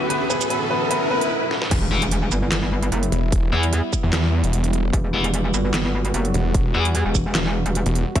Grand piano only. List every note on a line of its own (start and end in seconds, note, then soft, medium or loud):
0.10 0.29 B3 medium
0.10 0.29 B4 loud
0.30 0.49 B3 medium
0.30 0.49 B4 loud
0.50 0.69 B3 medium
0.50 0.69 B4 loud
0.71 0.89 B3 medium
0.71 0.89 B4 loud
0.91 1.09 B3 medium
0.91 1.09 B4 loud
1.11 1.29 B3 medium
1.11 1.29 B4 loud
8.16 8.20 E4 medium
8.16 8.20 E5 loud